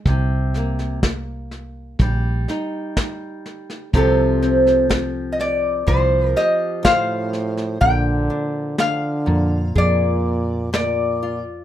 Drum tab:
SD |o-ooo-o-o-o-o-oo|o-ooo-o-o-o-o-oo|----o-------o---|
BD |o---o---o---o---|o---o---o---o---|o-------o-------|